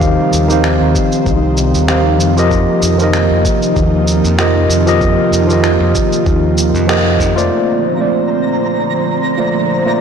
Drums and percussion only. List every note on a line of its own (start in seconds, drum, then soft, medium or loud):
0.02 kick loud
0.02 shaker soft
0.33 shaker medium
0.50 shaker soft
0.64 finger snap medium
0.64 shaker soft
0.95 kick medium
0.95 shaker medium
1.12 shaker soft
1.26 kick loud
1.26 shaker soft
1.57 shaker medium
1.75 shaker soft
1.88 finger snap medium
1.88 shaker soft
2.20 shaker medium
2.37 shaker soft
2.51 kick loud
2.51 shaker soft
2.82 shaker medium
2.99 shaker soft
3.13 finger snap loud
3.13 shaker soft
3.45 kick loud
3.45 shaker medium
3.62 shaker soft
3.76 kick loud
3.76 shaker soft
4.08 shaker medium
4.24 shaker soft
4.39 finger snap loud
4.39 shaker soft
4.70 shaker medium
4.87 shaker soft
5.01 kick loud
5.01 shaker soft
5.33 shaker medium
5.50 shaker soft
5.64 finger snap loud
5.64 shaker soft
5.95 kick loud
5.95 shaker medium
6.12 shaker soft
6.26 kick loud
6.26 shaker soft
6.58 shaker medium
6.75 shaker soft
6.89 finger snap medium
6.89 shaker soft
7.20 kick medium
7.20 shaker medium
7.38 shaker soft